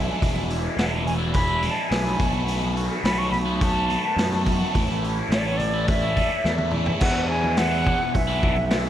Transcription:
0.04 overdriven electric guitar E3 G#3 D4 E4
0.08 high conga
0.18 overdriven electric guitar E2 B2 E3 G#3 D4 E4
0.22 picked electric bass E1, kick, open hi-hat
0.34 overdriven electric guitar E3 G#3 D4 E4, high conga
0.48 overdriven electric guitar E3 G#3 D4 E4, open hi-hat
0.77 picked electric bass E1, overdriven electric guitar E2 B2 E3 G#3 D4 E4, flute F#5, snare, open hi-hat
1.05 flute G#5, muted overdriven electric guitar stroke, open hi-hat, low conga
1.18 overdriven electric guitar E3 G#3 D4 E4
1.33 flute B5, kick, open hi-hat
1.48 overdriven electric guitar E3 G#3 D4 E4
1.61 overdriven electric guitar E3 G#3 D4 E4, open hi-hat, high conga
1.70 flute A5
1.88 picked electric bass B1, overdriven electric guitar E2 B2 E3 G#3 D4 E4, flute G#5, snare, open hi-hat
2.03 overdriven electric guitar E3 G#3 D4 E4, snare, high conga
2.17 picked electric bass B1, overdriven electric guitar B2 D#3 A3 B3 F#4, kick, open hi-hat, low conga
2.32 overdriven electric guitar A3 B3 F#4, high conga
2.44 overdriven electric guitar B2 D#3 A3 B3 F#4, open hi-hat
2.60 overdriven electric guitar A3 B3 F#4, high conga
2.74 overdriven electric guitar D#3 A3 B3 F#4, open hi-hat
3.03 picked electric bass B1, overdriven electric guitar B2 D#3 A3 B3 F#4, flute B5, snare, open hi-hat
3.18 flute C#6
3.31 flute B5, muted overdriven electric guitar stroke, open hi-hat, low conga
3.46 overdriven electric guitar A3 B3 F#4
3.60 flute A5, kick, open hi-hat
3.73 overdriven electric guitar A3 B3 F#4
3.87 overdriven electric guitar D#3 A3 B3 F#4, open hi-hat, high conga
4.14 picked electric bass F#2, overdriven electric guitar B2 D#3 A3 B3 F#4, open hi-hat
4.19 snare
4.30 overdriven electric guitar A3 B3 F#4, snare, high conga
4.43 overdriven electric guitar D#3 A3 B3 F#4, kick, open hi-hat, low conga
4.58 overdriven electric guitar A3 B3 F#4, high conga
4.73 picked electric bass A1, overdriven electric guitar A2 E3 A3 C#4 E4, kick, open hi-hat
4.87 overdriven electric guitar A3 C#4 E4, snare, high conga
5.03 overdriven electric guitar E3 A3 C#4 E4, open hi-hat
5.29 picked electric bass A1, overdriven electric guitar A2 E3 A3 C#4 E4, snare, open hi-hat
5.33 flute C#5
5.39 flute D5
5.45 flute C#5
5.57 flute D5, muted overdriven electric guitar stroke, open hi-hat, low conga
5.74 overdriven electric guitar A3 C#4 E4
5.88 flute E5, kick, open hi-hat
6.02 overdriven electric guitar A3 C#4 E4
6.16 overdriven electric guitar E3 A3 C#4 E4, kick, open hi-hat, high conga
6.43 picked electric bass E2, overdriven electric guitar A2 E3 A3 C#4 E4, snare, high conga
6.58 overdriven electric guitar A3 C#4 E4, high tom, high conga
6.71 overdriven electric guitar E3 A3 C#4 E4, mid tom, low conga
6.86 overdriven electric guitar C#4 E4, floor tom, low conga
6.91 overdriven electric guitar A3
7.00 picked electric bass E2, overdriven electric guitar E2 B2 E3 G#3 D4 E4, flute F#5, kick, crash
7.30 overdriven electric guitar E3 G#3 D4 E4, flute G#5
7.44 high conga
7.57 overdriven electric guitar E2 B2 E3 G#3 D4 E4, flute F#5, snare, open hi-hat
7.84 overdriven electric guitar E3 G#3 D4 E4, kick, low conga
7.99 muted overdriven electric guitar stroke
8.14 picked electric bass B1, flute E5, kick, open hi-hat
8.28 overdriven electric guitar E3 G#3 D4 E4
8.42 overdriven electric guitar E3 G#3 D4 E4, kick
8.56 muted overdriven electric guitar stroke, high conga
8.70 overdriven electric guitar E2 B2 E3 G#3 D4 E4, snare, open hi-hat

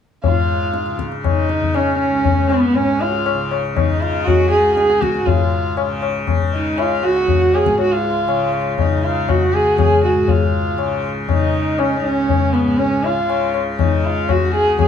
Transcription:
0.24 tanpura G#2, sarangi F4, tabla tin, tabla ge
0.35 harmonium F4
0.74 tabla te
0.86 tanpura C#3, tabla te
0.99 tabla ke
1.12 tabla te
1.24 sarangi D#4, tabla na, tabla ge
1.37 harmonium D#4
1.49 tanpura C#3, tabla te
1.62 tabla ge
1.74 sarangi C#4, tabla na
1.87 harmonium C#4
1.99 sarangi C#4
2.10 tanpura C#2, harmonium C#4
2.25 tabla tin, tabla ge
2.49 sarangi B3, tabla na
2.63 harmonium B3
2.71 tanpura G#2, sarangi C#4, tabla tin
2.89 harmonium C#4
3.01 sarangi F4, tabla na
3.07 harmonium F#4
3.14 harmonium F4
3.26 tabla na
3.34 tanpura C#3
3.51 tabla na
3.76 sarangi D#4, tabla na, tabla ge
3.89 harmonium D#4
3.97 tanpura C#3
4.01 sarangi F4, tabla te
4.25 sarangi F#4, tabla na, tabla ge
4.39 harmonium F#4
4.51 sarangi G#4, tabla te
4.58 tanpura C#2
4.76 sarangi G#4, tabla te
4.89 harmonium G#4, tabla te
5.01 sarangi F#4, tabla ke
5.15 tanpura G#2, tabla te
5.26 sarangi F4, tabla tin, tabla ge
5.40 harmonium F4
5.77 tanpura C#3, tabla na
6.02 tabla na
6.27 tabla na, tabla ge
6.41 tanpura C#3
6.54 sarangi D#4
6.65 harmonium D#4
6.78 sarangi F4, tabla na
6.90 harmonium F4
7.03 tanpura C#2, sarangi F#4, tabla na
7.16 harmonium F#4
7.28 tabla tin, tabla ge
7.54 sarangi G#4, tabla na
7.66 tanpura G#2, tabla ke
7.79 sarangi F#4, tabla tin
7.92 sarangi F4, harmonium F#4
8.04 harmonium F4
8.28 tanpura C#3, tabla na
8.53 tabla na
8.78 sarangi D#4, tabla na, tabla ge
8.89 tanpura C#3, harmonium D#4
8.99 harmonium F4
9.04 harmonium D#4, sarangi F4
9.29 sarangi F#4, tabla na, tabla ge
9.40 harmonium F#4
9.51 tanpura C#2, sarangi G#4, tabla te
9.78 sarangi G#4, tabla na, tabla ge
9.91 harmonium G#4
10.04 sarangi F#4, tabla te
10.12 tanpura G#2
10.28 sarangi F4, tabla tin, tabla ge
10.40 harmonium F4
10.74 tanpura C#3
10.78 tabla na
11.29 sarangi D#4, tabla na, tabla ge
11.36 tanpura C#3
11.41 harmonium D#4
11.79 sarangi C#4, tabla na
11.92 harmonium C#4
11.99 tanpura C#2, sarangi D#4
12.04 sarangi C#4
12.16 harmonium C#4
12.29 tabla tin, tabla ge
12.53 sarangi B3, tabla na
12.60 tanpura G#2
12.78 sarangi C#4, tabla tin
12.93 harmonium C#4
13.04 sarangi F4, tabla na
13.17 harmonium F4
13.21 tanpura C#3
13.30 tabla na
13.54 tabla na
13.79 sarangi D#4, tabla na, tabla ge
13.84 tanpura C#3
13.93 harmonium D#4
14.05 sarangi F4
14.17 harmonium F4
14.29 sarangi F#4, tabla na, tabla ge
14.43 tanpura C#2, harmonium F#4
14.54 sarangi G#4, tabla te
14.79 sarangi G#4, tabla na, tabla ge

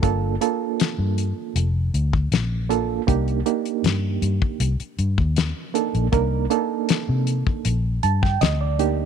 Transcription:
0.03 fingered electric bass G1, reed electric piano A#3 D4 F4 A4, kick, closed hi-hat
0.41 reed electric piano A#3 D4 F4 A4, closed hi-hat
0.80 snare, closed hi-hat
0.98 fingered electric bass G2
1.18 closed hi-hat
1.55 fingered electric bass F1, closed hi-hat
1.94 fingered electric bass D2, closed hi-hat
2.13 kick
2.32 fingered electric bass A#1, snare, closed hi-hat
2.69 reed electric piano A#3 D4 F4 A4, closed hi-hat
3.07 fingered electric bass C2, reed electric piano A#3 D4 D#4 G4, kick, closed hi-hat
3.28 closed hi-hat
3.46 reed electric piano A#3 D4 D#4 G4, closed hi-hat
3.66 closed hi-hat
3.84 fingered electric bass G2, snare, closed hi-hat
4.22 fingered electric bass G2, closed hi-hat
4.42 kick
4.60 fingered electric bass C2, closed hi-hat
4.80 muted fingered electric bass stroke, closed hi-hat
4.99 fingered electric bass G2, closed hi-hat
5.18 fingered electric bass D#2, kick
5.36 snare, closed hi-hat
5.74 reed electric piano A#3 D4 D#4 A4, closed hi-hat
5.95 fingered electric bass A#1, closed hi-hat
6.12 fingered electric bass C2, reed electric piano A#3 D4 D#4 A#4, kick, closed hi-hat
6.50 reed electric piano A#3 D4 D#4 A4, closed hi-hat
6.89 snare, closed hi-hat
7.09 fingered electric bass C3
7.27 closed hi-hat
7.47 kick
7.65 fingered electric bass A#1, closed hi-hat
8.03 fingered electric bass G2, reed electric piano A5, closed hi-hat
8.23 reed electric piano G5, kick, snare
8.41 fingered electric bass D2, reed electric piano D#5, snare, closed hi-hat
8.61 reed electric piano D5
8.79 reed electric piano A#3 D4 D#4 G4, closed hi-hat

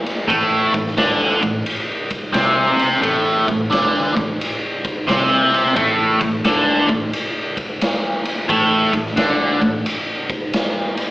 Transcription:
0.06 ride
0.28 picked electric bass A1, overdriven electric guitar A2 A3, kick, ride
0.74 picked electric bass A1, overdriven electric guitar A2, kick, ride
0.87 snare
0.97 picked electric bass D2, overdriven electric guitar D3 D4, snare, ride
1.42 picked electric bass A1, overdriven electric guitar A2, kick, ride
1.66 ride
2.10 kick, ride
2.33 picked electric bass C2, overdriven electric guitar C3 C4, snare, ride
2.79 ride
3.02 picked electric bass A1, overdriven electric guitar A2 A3, kick, ride
3.47 picked electric bass A1, overdriven electric guitar A2, kick, ride
3.70 picked electric bass D2, overdriven electric guitar D3 D4, snare, ride
4.14 picked electric bass A1, overdriven electric guitar A2, kick, snare, ride
4.41 ride
4.85 kick, ride
5.07 picked electric bass C2, overdriven electric guitar C3 C4, snare, ride
5.54 ride
5.76 picked electric bass A1, overdriven electric guitar A2 A3, kick, ride
6.20 picked electric bass A1, overdriven electric guitar A2, kick, ride
6.45 picked electric bass D2, overdriven electric guitar D3 D4, snare, ride
6.89 picked electric bass A1, overdriven electric guitar A2, kick, ride
7.13 ride
7.57 kick, ride
7.81 snare, ride
8.25 ride
8.48 picked electric bass A1, overdriven electric guitar A2 A3, kick, ride
8.93 picked electric bass A1, overdriven electric guitar A2, kick, ride
9.06 snare
9.16 picked electric bass D2, overdriven electric guitar D3 D4, snare, ride
9.62 picked electric bass A1, overdriven electric guitar A2, kick, ride
9.86 ride
10.30 kick, ride
10.53 snare, ride
10.97 ride

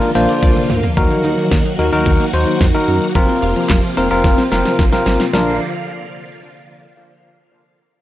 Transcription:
Already playing: string machine D3 F3 A#3 F4
0.02 synth arpeggio sound F3, closed hi-hat
0.15 analog synth bass A#1, tine electric piano A#3 D4 F4 C5, synth arpeggio sound A#3, closed hi-hat
0.29 synth arpeggio sound D5, closed hi-hat
0.42 analog synth bass C2, synth arpeggio sound D5, kick, closed hi-hat, high tom
0.56 closed hi-hat, mid tom
0.70 analog synth bass D2, synth arpeggio sound D3, mid tom, open hi-hat
0.83 synth arpeggio sound A#3, closed hi-hat, floor tom
0.97 analog synth bass D#2, synth arpeggio sound D#3, string machine D#3 F#3 A#3 F#4, tine electric piano D#4 F#4 A#4, kick, closed hi-hat
1.11 synth arpeggio sound A#3, closed hi-hat
1.24 analog synth bass D#2, synth arpeggio sound D#4, closed hi-hat
1.38 synth arpeggio sound D#3, closed hi-hat
1.51 analog synth bass D#2, synth arpeggio sound D#3, kick, snare, closed hi-hat
1.65 synth arpeggio sound D#3, closed hi-hat
1.79 analog synth bass D#2, synth arpeggio sound A#3, tine electric piano D#4 F#4 A#4, closed hi-hat
1.92 analog synth bass D#2, tine electric piano D#4 F#4 A#4, closed hi-hat
2.06 analog synth bass D#2, synth arpeggio sound D#3, kick, closed hi-hat
2.20 synth arpeggio sound A#3, closed hi-hat
2.33 analog synth bass D#2, synth arpeggio sound D#4, tine electric piano D#4 F#4 C5, closed hi-hat
2.47 synth arpeggio sound D#3, closed hi-hat
2.61 analog synth bass F2, synth arpeggio sound D#3, kick, snare, closed hi-hat
2.74 synth arpeggio sound D#3, tine electric piano D#4 F#4 A#4, closed hi-hat
2.88 analog synth bass F#2, synth arpeggio sound F#3, open hi-hat
3.02 closed hi-hat
3.15 analog synth bass F1, string machine C3 F3 F4, synth arpeggio sound F3, tine electric piano C4 F4 A#4, kick, closed hi-hat
3.29 synth arpeggio sound C4, closed hi-hat
3.42 analog synth bass F1, synth arpeggio sound F4, closed hi-hat
3.56 synth arpeggio sound F3, closed hi-hat
3.70 analog synth bass F1, synth arpeggio sound F3, kick, snare, clap, closed hi-hat
3.83 synth arpeggio sound F3, closed hi-hat
3.97 analog synth bass F1, synth arpeggio sound C4, tine electric piano C4 F4 A#4, closed hi-hat
4.11 analog synth bass F1, tine electric piano C4 F4 A#4, closed hi-hat
4.24 analog synth bass F1, synth arpeggio sound F3, kick, snare, closed hi-hat
4.38 synth arpeggio sound C4, snare, closed hi-hat
4.52 analog synth bass F1, tine electric piano C4 F4 A#4, synth arpeggio sound F4, snare, closed hi-hat
4.65 synth arpeggio sound F3, snare, closed hi-hat
4.79 analog synth bass G1, synth arpeggio sound F3, kick, snare, closed hi-hat
4.92 synth arpeggio sound F3, tine electric piano C4 F4 A#4, snare, closed hi-hat
5.06 analog synth bass G#1, synth arpeggio sound A#3, snare, open hi-hat
5.20 snare, closed hi-hat
5.33 analog synth bass A#1, string machine D3 F3 A#3 F4, synth arpeggio sound F3 A#3 D4 F4, tine electric piano D4 F4 A#4, snare

